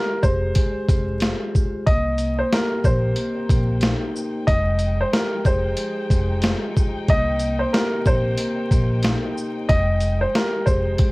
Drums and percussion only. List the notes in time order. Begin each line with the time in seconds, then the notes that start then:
0.23 kick, shaker
0.55 kick, closed hi-hat
0.88 kick, closed hi-hat, shaker
1.20 snare, closed hi-hat
1.55 kick, shaker
1.87 kick, closed hi-hat
2.18 closed hi-hat, shaker
2.53 snare, closed hi-hat
2.84 kick, shaker
3.16 closed hi-hat
3.49 kick, closed hi-hat, shaker
3.81 snare, closed hi-hat
4.16 shaker
4.48 kick, closed hi-hat
4.79 closed hi-hat, shaker
5.13 snare, closed hi-hat
5.45 kick, shaker
5.77 closed hi-hat
6.10 kick, closed hi-hat, shaker
6.42 snare, closed hi-hat
6.77 kick, shaker
7.08 kick, closed hi-hat
7.39 closed hi-hat, shaker
7.74 snare, closed hi-hat
8.06 kick, shaker
8.38 closed hi-hat
8.71 kick, closed hi-hat, shaker
9.03 snare, closed hi-hat
9.38 shaker
9.69 kick, closed hi-hat
10.00 closed hi-hat, shaker
10.35 snare, closed hi-hat
10.67 kick, shaker
10.98 kick, closed hi-hat